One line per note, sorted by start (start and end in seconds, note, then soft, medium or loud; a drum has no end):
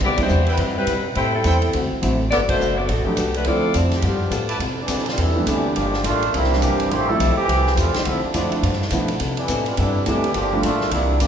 0.00 0.29 C2 medium
0.00 0.19 C3 soft
0.00 0.20 G3 soft
0.00 0.20 B3 soft
0.00 0.21 E4 soft
0.00 kick medium
0.00 crash medium
0.05 0.19 B3 medium
0.05 0.19 E4 medium
0.05 0.19 G4 medium
0.05 0.20 D5 loud
0.17 0.29 G3 medium
0.17 0.29 B3 medium
0.17 0.28 D4 medium
0.17 0.29 E4 medium
0.17 kick medium
0.17 ride medium
0.22 0.47 G3 medium
0.22 0.47 B3 medium
0.22 0.47 E4 medium
0.22 0.47 C5 medium
0.29 0.57 E2 medium
0.29 0.48 C3 soft
0.29 0.48 G3 medium
0.29 0.49 B3 medium
0.29 0.49 E4 medium
0.29 hi-hat pedal medium
0.46 0.77 G3 medium
0.46 0.77 C4 medium
0.46 0.55 E4 medium
0.46 0.77 E4 medium
0.46 0.55 B4 medium
0.46 0.77 B4 medium
0.46 0.55 C5 medium
0.46 0.55 G5 medium
0.46 ride soft
0.57 0.86 G2 medium
0.57 0.77 C3 soft
0.57 0.77 G3 soft
0.57 0.78 B3 soft
0.57 0.78 E4 soft
0.57 ride medium
0.78 1.04 G3 medium
0.78 1.04 C4 medium
0.78 1.04 E4 medium
0.78 1.04 B4 medium
0.87 1.15 B2 medium
0.87 1.06 C3 medium
0.87 1.06 G3 medium
0.87 1.06 B3 medium
0.87 1.07 E4 medium
0.87 hi-hat pedal soft
0.87 ride medium
1.15 1.34 A2 soft
1.15 1.44 A2 medium
1.15 1.35 G3 soft
1.15 1.33 A3 medium
1.15 1.35 C4 soft
1.15 1.44 E4 medium
1.15 1.33 E4 medium
1.15 1.36 E4 soft
1.15 1.33 G4 medium
1.15 1.44 A4 medium
1.15 1.44 C5 medium
1.15 1.33 C5 medium
1.15 1.44 G5 medium
1.15 ride medium
1.34 1.71 G3 medium
1.34 1.88 C4 medium
1.34 1.87 E4 medium
1.34 1.87 A4 medium
1.44 1.72 E2 medium
1.44 1.64 A2 medium
1.44 1.73 G3 medium
1.44 1.64 G3 medium
1.44 1.73 B3 medium
1.44 1.74 C4 medium
1.44 1.65 C4 medium
1.44 1.73 E4 medium
1.44 1.57 E4 medium
1.44 1.65 E4 medium
1.44 1.57 A4 medium
1.44 1.57 C5 medium
1.44 1.57 G5 medium
1.44 hi-hat pedal medium
1.44 ride medium
1.62 ride soft
1.73 1.90 D2 medium
1.73 1.92 D3 soft
1.73 1.93 A3 soft
1.73 1.93 C4 soft
1.73 1.93 F#4 medium
1.73 ride medium
1.92 muted upright bass stroke soft
2.02 2.30 A1 medium
2.02 2.21 D3 medium
2.02 2.18 F#3 medium
2.02 2.18 A3 medium
2.02 2.21 A3 medium
2.02 2.18 C4 soft
2.02 2.21 C4 medium
2.02 2.18 E4 medium
2.02 2.22 F#4 medium
2.02 hi-hat pedal soft
2.02 ride medium
2.30 2.59 G1 medium
2.30 2.50 G3 soft
2.30 2.39 B3 medium
2.30 2.50 B3 soft
2.30 2.39 F#4 medium
2.30 2.51 F#4 soft
2.30 2.39 A4 medium
2.30 2.51 A4 soft
2.30 2.38 D5 loud
2.30 snare soft
2.30 ride medium
2.49 2.76 A3 medium
2.49 2.76 D4 medium
2.49 2.76 F#4 medium
2.49 2.76 C5 loud
2.49 kick medium
2.49 ride medium
2.59 2.87 F#1 medium
2.59 2.78 G3 medium
2.59 2.79 B3 medium
2.59 2.79 F#4 medium
2.59 2.79 A4 medium
2.59 hi-hat pedal medium
2.77 2.88 B3 medium
2.77 2.89 F#4 medium
2.77 2.88 A4 medium
2.77 2.88 D5 medium
2.88 3.05 A1 medium
2.88 3.07 F#3 medium
2.88 3.07 G3 soft
2.88 3.05 B3 medium
2.88 3.08 B3 soft
2.88 3.07 D4 medium
2.88 3.08 F#4 soft
2.88 3.06 A4 medium
2.88 3.09 A4 medium
2.88 ride medium
3.05 3.35 D3 medium
3.05 3.16 F#3 medium
3.05 3.35 A3 medium
3.05 3.17 A3 medium
3.05 3.35 B3 medium
3.05 3.17 B3 medium
3.05 3.17 D4 medium
3.05 3.35 G4 medium
3.05 muted upright bass stroke soft
3.17 3.45 C2 medium
3.17 3.36 G3 medium
3.17 3.36 B3 medium
3.17 3.37 F#4 medium
3.17 3.37 A4 medium
3.17 hi-hat pedal soft
3.17 ride medium
3.34 3.46 A3 medium
3.34 3.46 D4 medium
3.34 3.46 F#4 medium
3.34 3.46 B4 medium
3.34 ride soft
3.44 3.74 D2 medium
3.44 3.64 D3 soft
3.44 4.03 F3 medium
3.44 4.03 A3 medium
3.44 4.03 C4 medium
3.44 3.65 C4 soft
3.44 3.76 C4 medium
3.44 4.04 E4 medium
3.44 3.66 F4 soft
3.44 3.76 F4 medium
3.44 3.75 A4 medium
3.44 3.66 A4 soft
3.44 3.76 D5 loud
3.44 ride medium
3.74 4.02 F2 medium
3.74 3.93 D3 medium
3.74 3.94 C4 medium
3.74 3.94 F4 medium
3.74 3.94 A4 medium
3.74 hi-hat pedal medium
3.74 ride medium
3.91 snare soft
3.91 ride soft
3.96 4.05 E3 medium
3.96 4.05 A3 medium
3.96 4.05 C4 medium
3.96 4.04 G4 medium
4.02 4.30 G2 medium
4.02 4.48 F3 medium
4.02 4.22 G3 soft
4.02 4.22 B3 soft
4.02 4.48 D4 medium
4.02 4.23 F4 soft
4.02 4.24 A4 soft
4.02 ride medium
4.06 4.48 B3 medium
4.06 4.48 G4 medium
4.31 4.59 A2 medium
4.31 4.50 G3 medium
4.31 4.51 B3 medium
4.31 4.51 F4 medium
4.31 4.51 A4 medium
4.31 hi-hat pedal medium
4.31 ride medium
4.49 4.57 E4 medium
4.49 4.57 B4 medium
4.49 4.57 D5 medium
4.49 4.57 A5 medium
4.49 ride soft
4.59 4.88 C3 medium
4.59 4.79 C3 soft
4.59 4.80 B3 soft
4.59 4.80 E4 soft
4.59 4.81 A4 soft
4.59 ride medium
4.80 5.07 E3 medium
4.80 5.07 G3 medium
4.80 5.06 B3 medium
4.80 5.07 D4 medium
4.88 5.17 B2 medium
4.88 5.08 C3 medium
4.88 5.08 B3 medium
4.88 5.09 E4 medium
4.88 5.09 A4 medium
4.88 hi-hat pedal medium
4.88 ride medium
4.99 snare soft
5.06 5.19 G3 medium
5.06 5.19 B3 medium
5.06 5.19 D4 medium
5.06 5.19 F4 medium
5.06 snare soft
5.06 ride soft
5.17 5.46 E2 medium
5.17 5.37 C3 soft
5.17 5.48 G3 medium
5.17 5.37 B3 soft
5.17 5.48 B3 medium
5.17 5.47 D4 medium
5.17 5.38 E4 soft
5.17 5.48 E4 medium
5.17 5.38 A4 soft
5.17 ride medium
5.36 5.74 E3 medium
5.36 5.74 G3 medium
5.36 5.74 A3 medium
5.36 5.74 B3 medium
5.36 5.74 D4 medium
5.46 5.75 D2 medium
5.46 5.65 C3 medium
5.46 5.76 E3 medium
5.46 5.66 B3 medium
5.46 5.77 B3 medium
5.46 5.76 D4 medium
5.46 5.66 E4 medium
5.46 5.75 G4 medium
5.46 5.67 A4 medium
5.46 hi-hat pedal medium
5.46 ride medium
5.74 6.04 G1 medium
5.74 6.03 F3 medium
5.74 5.94 G3 soft
5.74 5.94 A#3 soft
5.74 6.03 A#3 medium
5.74 6.03 D4 medium
5.74 5.95 F4 soft
5.74 6.03 G4 medium
5.74 5.95 A4 soft
5.74 ride medium
5.93 snare soft
6.03 6.33 A1 medium
6.03 6.23 G3 medium
6.03 6.32 A3 medium
6.03 6.23 A#3 medium
6.03 6.32 A#3 medium
6.03 6.32 D4 medium
6.03 6.23 F4 medium
6.03 6.32 F4 loud
6.03 6.24 A4 medium
6.03 hi-hat pedal soft
6.03 ride medium
6.22 ride soft
6.33 6.62 C2 medium
6.33 6.52 C3 soft
6.33 6.53 G3 soft
6.33 6.64 G3 medium
6.33 6.53 A#3 soft
6.33 6.62 A#3 medium
6.33 6.63 C4 medium
6.33 6.53 E4 soft
6.33 6.64 E4 loud
6.33 ride medium
6.44 snare soft
6.52 6.89 E3 medium
6.52 6.89 G3 medium
6.52 6.89 A#3 medium
6.52 6.89 C4 medium
6.52 6.89 D4 medium
6.52 snare soft
6.62 6.91 G1 medium
6.62 6.81 C3 medium
6.62 6.90 E3 medium
6.62 6.81 G3 medium
6.62 6.90 A#3 medium
6.62 6.82 A#3 medium
6.62 6.90 C4 medium
6.62 6.82 E4 medium
6.62 6.90 G4 medium
6.62 hi-hat pedal medium
6.62 ride medium
6.80 ride medium
6.91 7.19 A1 medium
6.91 7.10 F3 soft
6.91 7.10 A3 soft
6.91 7.09 A3 medium
6.91 7.08 E4 medium
6.91 7.10 E4 soft
6.91 7.09 G4 medium
6.91 7.11 G4 soft
6.91 7.09 C5 medium
6.91 ride medium
7.09 7.19 F3 medium
7.09 7.37 G3 medium
7.09 7.19 G3 medium
7.09 7.19 A3 medium
7.09 7.36 C4 medium
7.09 7.19 C4 medium
7.09 7.38 E4 medium
7.09 7.19 E4 medium
7.09 7.37 A4 medium
7.20 7.36 B1 medium
7.20 7.39 F3 medium
7.20 7.39 A3 medium
7.20 7.39 E4 medium
7.20 7.39 G4 medium
7.20 hi-hat pedal medium
7.20 ride medium
7.37 7.74 E3 medium
7.37 7.74 A3 medium
7.37 7.74 C4 medium
7.37 7.75 G4 loud
7.37 muted upright bass stroke soft
7.48 7.76 C2 medium
7.48 7.67 F3 soft
7.48 7.67 A3 soft
7.48 7.68 E4 soft
7.48 7.68 G4 medium
7.48 ride medium
7.67 snare soft
7.76 7.93 E2 medium
7.76 7.95 F3 medium
7.76 8.05 G3 medium
7.76 7.96 A3 medium
7.76 8.05 A3 medium
7.76 8.05 C4 medium
7.76 7.96 E4 medium
7.76 8.05 F4 medium
7.76 7.96 G4 medium
7.76 hi-hat pedal soft
7.76 ride medium
7.94 muted upright bass stroke soft
7.94 snare medium
7.94 ride medium
8.05 8.22 D2 medium
8.05 8.24 D3 soft
8.05 8.23 F3 medium
8.05 8.24 A3 soft
8.05 8.22 A3 medium
8.05 8.22 C4 medium
8.05 8.25 C4 soft
8.05 8.24 E4 medium
8.05 8.25 F4 soft
8.05 ride medium
8.23 8.33 F3 medium
8.23 8.33 A3 medium
8.23 8.33 C4 medium
8.23 8.33 D4 medium
8.23 muted upright bass stroke soft
8.34 8.51 F2 medium
8.34 8.53 D3 medium
8.34 8.77 F3 medium
8.34 8.63 F3 medium
8.34 8.77 A3 medium
8.34 8.53 A3 medium
8.34 8.63 A3 medium
8.34 8.61 C4 medium
8.34 8.63 C4 medium
8.34 8.53 C4 medium
8.34 8.78 D4 medium
8.34 8.64 D4 medium
8.34 8.63 E4 medium
8.34 8.54 F4 medium
8.34 hi-hat pedal medium
8.34 ride medium
8.52 muted upright bass stroke soft
8.52 ride soft
8.63 8.91 G2 medium
8.63 8.82 G2 soft
8.63 8.82 F3 soft
8.63 8.83 B3 soft
8.63 8.83 E4 medium
8.63 ride medium
8.73 snare soft
8.82 snare soft
8.90 9.10 G2 medium
8.90 9.20 B2 medium
8.90 9.08 F3 soft
8.90 9.11 F3 medium
8.90 9.08 A3 soft
8.90 9.08 B3 medium
8.90 9.11 B3 medium
8.90 9.08 D4 medium
8.90 9.08 E4 medium
8.90 9.11 E4 medium
8.90 hi-hat pedal medium
8.90 ride medium
9.08 ride medium
9.20 9.39 C3 soft
9.20 9.48 C3 medium
9.20 9.39 B3 soft
9.20 9.40 E4 soft
9.20 9.40 A4 soft
9.20 ride medium
9.37 9.65 E3 medium
9.37 9.65 G3 medium
9.37 9.65 B3 medium
9.37 9.65 D4 medium
9.37 ride soft
9.48 9.77 A2 medium
9.48 9.68 C3 medium
9.48 9.68 B3 medium
9.48 9.68 E4 medium
9.48 9.69 A4 medium
9.48 hi-hat pedal medium
9.48 ride medium
9.66 9.77 G3 medium
9.66 9.77 B3 medium
9.66 9.77 D4 medium
9.66 9.77 F4 medium
9.66 ride soft
9.77 10.06 G2 loud
9.77 9.96 C3 soft
9.77 10.05 G3 medium
9.77 9.97 B3 soft
9.77 10.05 B3 medium
9.77 10.05 D4 medium
9.77 10.05 E4 medium
9.77 9.97 E4 soft
9.77 9.97 A4 medium
9.77 ride medium
10.06 10.34 D2 medium
10.06 10.25 C3 medium
10.06 10.36 E3 medium
10.06 10.22 G3 soft
10.06 10.22 A3 medium
10.06 10.22 B3 soft
10.06 10.26 B3 medium
10.06 10.36 B3 medium
10.06 10.22 D4 medium
10.06 10.35 D4 medium
10.06 10.22 E4 medium
10.06 10.26 E4 medium
10.06 10.34 G4 medium
10.06 10.26 A4 medium
10.06 hi-hat pedal medium
10.06 ride medium
10.24 ride soft
10.34 10.62 G1 medium
10.34 10.62 F3 medium
10.34 10.54 G3 soft
10.34 10.62 A#3 medium
10.34 10.54 A#3 soft
10.34 10.62 D4 medium
10.34 10.54 F4 soft
10.34 10.62 G4 medium
10.34 10.55 A4 soft
10.34 ride medium
10.53 10.63 G3 medium
10.53 10.63 A3 medium
10.53 10.63 A#3 medium
10.53 10.63 D4 medium
10.53 10.63 F4 medium
10.63 10.91 A1 medium
10.63 10.83 G3 medium
10.63 10.91 A3 medium
10.63 10.91 A#3 medium
10.63 10.83 A#3 medium
10.63 10.91 D4 medium
10.63 10.91 F4 medium
10.63 10.83 F4 medium
10.63 10.84 A4 medium
10.63 hi-hat pedal medium
10.63 ride medium
10.81 snare soft
10.91 11.20 C2 loud
10.91 11.11 C3 soft
10.91 11.11 E3 soft
10.91 11.20 G3 medium
10.91 11.19 A#3 medium
10.91 11.12 A#3 medium
10.91 11.19 D4 medium
10.91 11.12 D4 soft
10.91 11.20 E4 medium
10.91 ride medium
11.20 11.27 G1 medium
11.20 11.27 C3 medium
11.20 11.27 E3 medium
11.20 11.27 A#3 medium
11.20 11.27 D4 medium
11.20 11.27 G4 medium
11.20 hi-hat pedal medium
11.20 ride medium